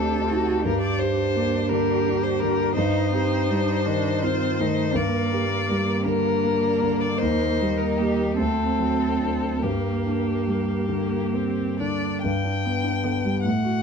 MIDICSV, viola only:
0, 0, Header, 1, 2, 480
1, 0, Start_track
1, 0, Key_signature, -2, "minor"
1, 0, Tempo, 713436
1, 433, Time_signature, 6, 3, 24, 8
1, 2350, Tempo, 729927
1, 3790, Tempo, 753769
1, 4750, Tempo, 791557
1, 5710, Tempo, 854701
1, 7150, Tempo, 913242
1, 7630, Tempo, 787402
1, 8590, End_track
2, 0, Start_track
2, 0, Title_t, "Viola"
2, 0, Program_c, 0, 41
2, 0, Note_on_c, 0, 67, 40
2, 1119, Note_off_c, 0, 67, 0
2, 1151, Note_on_c, 0, 67, 52
2, 1848, Note_off_c, 0, 67, 0
2, 1867, Note_on_c, 0, 63, 50
2, 2583, Note_on_c, 0, 62, 58
2, 2593, Note_off_c, 0, 63, 0
2, 2836, Note_on_c, 0, 60, 55
2, 2846, Note_off_c, 0, 62, 0
2, 3080, Note_on_c, 0, 57, 47
2, 3090, Note_off_c, 0, 60, 0
2, 3323, Note_on_c, 0, 58, 49
2, 3333, Note_off_c, 0, 57, 0
2, 5467, Note_off_c, 0, 58, 0
2, 5470, Note_on_c, 0, 60, 45
2, 6194, Note_on_c, 0, 58, 38
2, 6203, Note_off_c, 0, 60, 0
2, 6857, Note_off_c, 0, 58, 0
2, 6896, Note_on_c, 0, 58, 48
2, 7155, Note_on_c, 0, 60, 46
2, 7163, Note_off_c, 0, 58, 0
2, 7395, Note_on_c, 0, 62, 39
2, 7403, Note_off_c, 0, 60, 0
2, 7630, Note_off_c, 0, 62, 0
2, 8116, Note_on_c, 0, 59, 49
2, 8293, Note_off_c, 0, 59, 0
2, 8590, End_track
0, 0, End_of_file